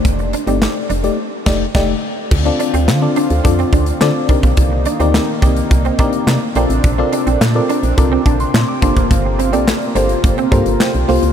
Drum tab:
CC |----------x-x---|x---------------|----------------|----------------|
HH |xxxx--xx--------|-xxx--xxxxxx--xx|x-xx--xxxxxx--xx|x-xx--xxx-xx--xx|
CP |----x-----------|----x-------x---|----x-------x---|----x-------x---|
SD |----o-----o-o---|----o-------o---|----o-------o---|----o-------o---|
BD |o---------o-o---|o-------o-o---oo|o-----o-o-o-----|o-------o-o---oo|

CC |----------------|
HH |x-xx-xxxxxxx-xox|
CP |----x-------x---|
SD |----o-------o---|
BD |o-------o-o-----|